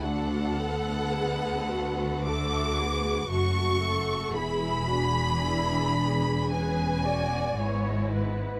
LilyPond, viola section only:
\new Staff \with { instrumentName = "Viola section" } { \time 4/4 \key d \lydian \tempo 4 = 56 fis'8 a'8 gis'8 fis'8 a'8 gis'8 fis'8 a'8 | gis'8 fis'8 e'8 gis'8 b'8 d''8 cis''8 b'8 | }